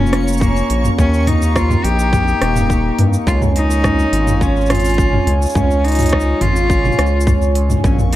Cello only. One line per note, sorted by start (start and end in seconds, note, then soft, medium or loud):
0.00 0.43 C#4 loud
0.41 0.84 A#3 medium
0.99 1.29 C#4 loud
1.28 1.57 D#4 loud
1.56 1.86 F4 loud
1.85 2.99 G4 loud
3.27 3.40 F4 loud
3.56 4.43 D#4 loud
4.42 4.71 C#4 loud
4.70 5.27 F4 loud
5.55 5.86 C#4 medium
5.84 6.43 D#4 loud
6.42 7.27 F4 loud
7.84 7.97 C#4 medium
8.13 8.16 D#4 loud